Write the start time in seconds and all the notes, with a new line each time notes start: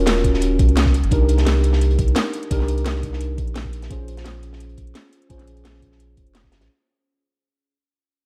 Already playing: D#1 C#4 F4 F#4 A#4
0.06 snare, closed hi-hat
0.16 snare
0.24 kick, closed hi-hat
0.34 snare
0.41 closed hi-hat
0.59 C#2, kick, closed hi-hat
0.69 closed hi-hat
0.77 C2, snare, closed hi-hat
0.86 kick, snare
0.94 closed hi-hat
1.04 G1, closed hi-hat
1.11 C2 D4 D#4 G4 A#4, kick, closed hi-hat
1.29 closed hi-hat
1.38 snare, closed hi-hat
1.46 snare, closed hi-hat
1.63 closed hi-hat
1.73 snare
1.81 closed hi-hat
1.91 closed hi-hat
1.99 C2, kick, closed hi-hat
2.08 closed hi-hat
2.16 snare, closed hi-hat
2.33 closed hi-hat
2.43 closed hi-hat
2.50 C2 D4 D#4 G4 A#4, kick, closed hi-hat
2.60 snare
2.68 closed hi-hat
2.78 closed hi-hat
2.85 snare, closed hi-hat
2.96 snare
3.03 kick, closed hi-hat
3.13 snare
3.21 closed hi-hat
3.38 A#1, kick, closed hi-hat
3.48 closed hi-hat
3.56 snare, closed hi-hat
3.65 kick
3.73 closed hi-hat
3.82 snare, closed hi-hat
3.90 A#1 C#4 F4 G#4 C5, kick, closed hi-hat
4.08 closed hi-hat
4.17 snare, closed hi-hat
4.25 snare, closed hi-hat
4.43 closed hi-hat
4.53 snare
4.60 closed hi-hat
4.69 closed hi-hat
4.77 A#1, kick, closed hi-hat
4.87 closed hi-hat
4.95 snare, closed hi-hat
5.13 closed hi-hat
5.22 closed hi-hat
5.29 A#1 C#4 F4 G#4 C5, kick, closed hi-hat
5.39 snare, closed hi-hat
5.47 closed hi-hat
5.57 closed hi-hat
5.65 snare, closed hi-hat
5.74 snare
5.82 kick, closed hi-hat
5.92 snare
6.00 closed hi-hat
6.17 F1, kick, closed hi-hat
6.27 closed hi-hat
6.35 snare, closed hi-hat
6.44 kick, snare
6.52 G#1, snare, closed hi-hat
6.61 A#1, snare, closed hi-hat